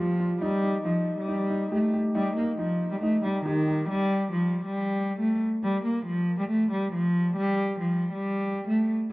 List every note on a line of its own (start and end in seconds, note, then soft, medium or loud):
0.00 0.39 F3 medium
0.00 0.44 G3 medium
0.00 0.20 F4 medium
0.20 0.41 F4 medium
0.41 0.82 G3 loud
0.41 0.62 D#4 loud
0.63 0.84 D#4 medium
0.85 1.15 F3 medium
0.85 1.27 D#4 medium
1.17 1.69 G3 medium
1.28 1.49 D#4 medium
1.50 2.14 D#4 medium
1.72 1.93 A3 medium
1.72 1.92 G4 medium
1.94 3.02 G4 medium
2.15 2.36 G3 loud
2.15 2.35 D#4 medium
2.37 2.57 A#3 medium
2.37 2.57 D#4 medium
2.59 2.89 F3 medium
2.59 3.01 D#4 medium
2.91 3.01 G3 medium
3.02 3.22 A3 medium
3.02 3.23 D#4 medium
3.24 3.44 G3 medium
3.24 3.89 D#4 medium
3.46 3.87 D#3 loud
3.46 3.66 G4 medium
3.68 3.89 G4 medium
3.89 4.30 G3 loud
4.32 4.63 F3 medium
4.65 5.16 G3 medium
5.20 5.40 A3 medium
5.63 5.84 G3 loud
5.84 6.05 A#3 medium
6.07 6.37 F3 medium
6.39 6.49 G3 medium
6.50 6.71 A3 medium
6.72 6.92 G3 medium
6.94 7.35 F3 loud
7.37 7.78 G3 loud
7.80 8.11 F3 medium
8.13 8.64 G3 medium
8.68 8.88 A3 medium